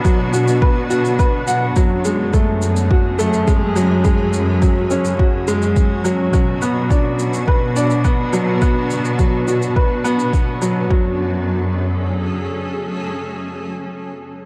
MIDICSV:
0, 0, Header, 1, 5, 480
1, 0, Start_track
1, 0, Key_signature, 3, "minor"
1, 0, Tempo, 571429
1, 1478, Time_signature, 4, 2, 24, 8
1, 12142, End_track
2, 0, Start_track
2, 0, Title_t, "Ambient pad"
2, 0, Program_c, 0, 92
2, 0, Note_on_c, 0, 59, 83
2, 0, Note_on_c, 0, 62, 72
2, 0, Note_on_c, 0, 66, 86
2, 1446, Note_off_c, 0, 62, 0
2, 1446, Note_off_c, 0, 66, 0
2, 1447, Note_off_c, 0, 59, 0
2, 1481, Note_on_c, 0, 54, 80
2, 1481, Note_on_c, 0, 61, 71
2, 1481, Note_on_c, 0, 68, 70
2, 3381, Note_off_c, 0, 68, 0
2, 3403, Note_on_c, 0, 66, 70
2, 5286, Note_off_c, 0, 54, 0
2, 5286, Note_off_c, 0, 61, 0
2, 5323, Note_on_c, 0, 59, 74
2, 5323, Note_on_c, 0, 62, 71
2, 9127, Note_off_c, 0, 59, 0
2, 9127, Note_off_c, 0, 62, 0
2, 9127, Note_off_c, 0, 66, 0
2, 9161, Note_on_c, 0, 54, 72
2, 9161, Note_on_c, 0, 68, 64
2, 9161, Note_on_c, 0, 69, 81
2, 9163, Note_on_c, 0, 61, 72
2, 11718, Note_off_c, 0, 54, 0
2, 11718, Note_off_c, 0, 68, 0
2, 11718, Note_off_c, 0, 69, 0
2, 11719, Note_off_c, 0, 61, 0
2, 12142, End_track
3, 0, Start_track
3, 0, Title_t, "Upright piano"
3, 0, Program_c, 1, 0
3, 0, Control_c, 1, 64, 127
3, 0, Note_on_c, 1, 54, 90
3, 0, Note_on_c, 1, 59, 81
3, 0, Note_on_c, 1, 62, 86
3, 0, Note_on_c, 1, 71, 69
3, 37, Note_off_c, 1, 54, 0
3, 37, Note_on_c, 1, 54, 65
3, 175, Note_off_c, 1, 54, 0
3, 278, Note_on_c, 1, 66, 67
3, 415, Note_off_c, 1, 66, 0
3, 518, Note_off_c, 1, 71, 0
3, 518, Note_on_c, 1, 71, 72
3, 746, Note_off_c, 1, 71, 0
3, 757, Note_on_c, 1, 66, 81
3, 985, Note_off_c, 1, 66, 0
3, 999, Note_on_c, 1, 71, 69
3, 1227, Note_off_c, 1, 71, 0
3, 1239, Note_on_c, 1, 78, 63
3, 1467, Note_off_c, 1, 78, 0
3, 1481, Note_on_c, 1, 54, 80
3, 1490, Control_c, 1, 64, 0
3, 1491, Note_off_c, 1, 59, 0
3, 1494, Note_off_c, 1, 62, 0
3, 1640, Control_c, 1, 64, 127
3, 1708, Note_off_c, 1, 54, 0
3, 1722, Note_on_c, 1, 56, 64
3, 1948, Note_off_c, 1, 56, 0
3, 1961, Note_on_c, 1, 57, 69
3, 2188, Note_off_c, 1, 57, 0
3, 2440, Note_on_c, 1, 66, 66
3, 2667, Note_off_c, 1, 66, 0
3, 2677, Note_on_c, 1, 57, 88
3, 2906, Note_off_c, 1, 57, 0
3, 2918, Note_on_c, 1, 56, 84
3, 3146, Note_off_c, 1, 56, 0
3, 3157, Note_on_c, 1, 54, 89
3, 3385, Note_off_c, 1, 54, 0
3, 3397, Note_on_c, 1, 56, 81
3, 3626, Note_off_c, 1, 56, 0
3, 3879, Note_on_c, 1, 54, 61
3, 4015, Note_off_c, 1, 54, 0
3, 4120, Note_on_c, 1, 61, 66
3, 4256, Note_off_c, 1, 61, 0
3, 4360, Note_on_c, 1, 66, 68
3, 4587, Note_off_c, 1, 66, 0
3, 4600, Note_on_c, 1, 56, 89
3, 4827, Note_off_c, 1, 56, 0
3, 5076, Note_on_c, 1, 54, 78
3, 5305, Note_off_c, 1, 54, 0
3, 5317, Note_on_c, 1, 54, 86
3, 5329, Control_c, 1, 64, 0
3, 5481, Control_c, 1, 64, 127
3, 5546, Note_off_c, 1, 54, 0
3, 5559, Note_on_c, 1, 59, 68
3, 5787, Note_off_c, 1, 59, 0
3, 5798, Note_on_c, 1, 62, 65
3, 6026, Note_off_c, 1, 62, 0
3, 6281, Note_on_c, 1, 71, 69
3, 6508, Note_off_c, 1, 71, 0
3, 6520, Note_on_c, 1, 62, 81
3, 6747, Note_off_c, 1, 62, 0
3, 6758, Note_on_c, 1, 59, 82
3, 6986, Note_off_c, 1, 59, 0
3, 6997, Note_on_c, 1, 54, 86
3, 7226, Note_off_c, 1, 54, 0
3, 7239, Note_on_c, 1, 59, 80
3, 7466, Note_off_c, 1, 59, 0
3, 7719, Note_on_c, 1, 54, 65
3, 7855, Note_off_c, 1, 54, 0
3, 7960, Note_on_c, 1, 66, 64
3, 8096, Note_off_c, 1, 66, 0
3, 8198, Note_on_c, 1, 71, 67
3, 8426, Note_off_c, 1, 71, 0
3, 8436, Note_on_c, 1, 59, 83
3, 8665, Note_off_c, 1, 59, 0
3, 8917, Note_on_c, 1, 54, 78
3, 9146, Note_off_c, 1, 54, 0
3, 9158, Note_on_c, 1, 54, 69
3, 9170, Control_c, 1, 64, 0
3, 9327, Control_c, 1, 64, 127
3, 9382, Note_off_c, 1, 54, 0
3, 12142, End_track
4, 0, Start_track
4, 0, Title_t, "Cello section"
4, 0, Program_c, 2, 48
4, 0, Note_on_c, 2, 47, 89
4, 1456, Note_off_c, 2, 47, 0
4, 1482, Note_on_c, 2, 42, 83
4, 5296, Note_off_c, 2, 42, 0
4, 5322, Note_on_c, 2, 47, 80
4, 9136, Note_off_c, 2, 47, 0
4, 9160, Note_on_c, 2, 42, 82
4, 10565, Note_off_c, 2, 42, 0
4, 12142, End_track
5, 0, Start_track
5, 0, Title_t, "Drums"
5, 42, Note_on_c, 9, 36, 94
5, 42, Note_on_c, 9, 82, 40
5, 126, Note_off_c, 9, 36, 0
5, 126, Note_off_c, 9, 82, 0
5, 282, Note_on_c, 9, 82, 57
5, 366, Note_off_c, 9, 82, 0
5, 402, Note_on_c, 9, 82, 38
5, 486, Note_off_c, 9, 82, 0
5, 521, Note_on_c, 9, 36, 100
5, 605, Note_off_c, 9, 36, 0
5, 762, Note_on_c, 9, 82, 55
5, 846, Note_off_c, 9, 82, 0
5, 883, Note_on_c, 9, 82, 23
5, 967, Note_off_c, 9, 82, 0
5, 1002, Note_on_c, 9, 36, 88
5, 1002, Note_on_c, 9, 82, 38
5, 1086, Note_off_c, 9, 36, 0
5, 1086, Note_off_c, 9, 82, 0
5, 1240, Note_on_c, 9, 82, 57
5, 1324, Note_off_c, 9, 82, 0
5, 1480, Note_on_c, 9, 82, 39
5, 1482, Note_on_c, 9, 36, 91
5, 1564, Note_off_c, 9, 82, 0
5, 1566, Note_off_c, 9, 36, 0
5, 1721, Note_on_c, 9, 82, 53
5, 1805, Note_off_c, 9, 82, 0
5, 1962, Note_on_c, 9, 36, 84
5, 1962, Note_on_c, 9, 82, 37
5, 2046, Note_off_c, 9, 36, 0
5, 2046, Note_off_c, 9, 82, 0
5, 2201, Note_on_c, 9, 82, 53
5, 2285, Note_off_c, 9, 82, 0
5, 2322, Note_on_c, 9, 82, 35
5, 2406, Note_off_c, 9, 82, 0
5, 2442, Note_on_c, 9, 36, 90
5, 2526, Note_off_c, 9, 36, 0
5, 2682, Note_on_c, 9, 82, 55
5, 2766, Note_off_c, 9, 82, 0
5, 2800, Note_on_c, 9, 82, 24
5, 2884, Note_off_c, 9, 82, 0
5, 2922, Note_on_c, 9, 36, 83
5, 2922, Note_on_c, 9, 82, 35
5, 3006, Note_off_c, 9, 36, 0
5, 3006, Note_off_c, 9, 82, 0
5, 3161, Note_on_c, 9, 82, 58
5, 3245, Note_off_c, 9, 82, 0
5, 3400, Note_on_c, 9, 82, 35
5, 3402, Note_on_c, 9, 36, 90
5, 3484, Note_off_c, 9, 82, 0
5, 3486, Note_off_c, 9, 36, 0
5, 3641, Note_on_c, 9, 82, 48
5, 3725, Note_off_c, 9, 82, 0
5, 3882, Note_on_c, 9, 36, 86
5, 3883, Note_on_c, 9, 82, 33
5, 3966, Note_off_c, 9, 36, 0
5, 3967, Note_off_c, 9, 82, 0
5, 4121, Note_on_c, 9, 82, 46
5, 4205, Note_off_c, 9, 82, 0
5, 4240, Note_on_c, 9, 82, 35
5, 4324, Note_off_c, 9, 82, 0
5, 4362, Note_on_c, 9, 36, 87
5, 4446, Note_off_c, 9, 36, 0
5, 4601, Note_on_c, 9, 82, 49
5, 4685, Note_off_c, 9, 82, 0
5, 4723, Note_on_c, 9, 82, 23
5, 4807, Note_off_c, 9, 82, 0
5, 4842, Note_on_c, 9, 36, 79
5, 4842, Note_on_c, 9, 82, 33
5, 4926, Note_off_c, 9, 36, 0
5, 4926, Note_off_c, 9, 82, 0
5, 5082, Note_on_c, 9, 82, 53
5, 5166, Note_off_c, 9, 82, 0
5, 5322, Note_on_c, 9, 36, 85
5, 5322, Note_on_c, 9, 82, 33
5, 5406, Note_off_c, 9, 36, 0
5, 5406, Note_off_c, 9, 82, 0
5, 5561, Note_on_c, 9, 82, 48
5, 5645, Note_off_c, 9, 82, 0
5, 5801, Note_on_c, 9, 36, 81
5, 5802, Note_on_c, 9, 82, 33
5, 5885, Note_off_c, 9, 36, 0
5, 5886, Note_off_c, 9, 82, 0
5, 6042, Note_on_c, 9, 82, 50
5, 6126, Note_off_c, 9, 82, 0
5, 6162, Note_on_c, 9, 82, 33
5, 6246, Note_off_c, 9, 82, 0
5, 6281, Note_on_c, 9, 36, 85
5, 6365, Note_off_c, 9, 36, 0
5, 6521, Note_on_c, 9, 82, 46
5, 6605, Note_off_c, 9, 82, 0
5, 6640, Note_on_c, 9, 82, 22
5, 6724, Note_off_c, 9, 82, 0
5, 6759, Note_on_c, 9, 82, 32
5, 6761, Note_on_c, 9, 36, 78
5, 6843, Note_off_c, 9, 82, 0
5, 6845, Note_off_c, 9, 36, 0
5, 7000, Note_on_c, 9, 82, 53
5, 7084, Note_off_c, 9, 82, 0
5, 7240, Note_on_c, 9, 82, 32
5, 7241, Note_on_c, 9, 36, 85
5, 7324, Note_off_c, 9, 82, 0
5, 7325, Note_off_c, 9, 36, 0
5, 7480, Note_on_c, 9, 82, 49
5, 7564, Note_off_c, 9, 82, 0
5, 7601, Note_on_c, 9, 82, 23
5, 7685, Note_off_c, 9, 82, 0
5, 7721, Note_on_c, 9, 82, 35
5, 7722, Note_on_c, 9, 36, 76
5, 7805, Note_off_c, 9, 82, 0
5, 7806, Note_off_c, 9, 36, 0
5, 7963, Note_on_c, 9, 82, 49
5, 8047, Note_off_c, 9, 82, 0
5, 8082, Note_on_c, 9, 82, 32
5, 8166, Note_off_c, 9, 82, 0
5, 8201, Note_on_c, 9, 36, 85
5, 8285, Note_off_c, 9, 36, 0
5, 8444, Note_on_c, 9, 82, 48
5, 8528, Note_off_c, 9, 82, 0
5, 8562, Note_on_c, 9, 82, 22
5, 8646, Note_off_c, 9, 82, 0
5, 8681, Note_on_c, 9, 36, 74
5, 8683, Note_on_c, 9, 82, 32
5, 8765, Note_off_c, 9, 36, 0
5, 8767, Note_off_c, 9, 82, 0
5, 8921, Note_on_c, 9, 82, 51
5, 9005, Note_off_c, 9, 82, 0
5, 9160, Note_on_c, 9, 36, 89
5, 9244, Note_off_c, 9, 36, 0
5, 12142, End_track
0, 0, End_of_file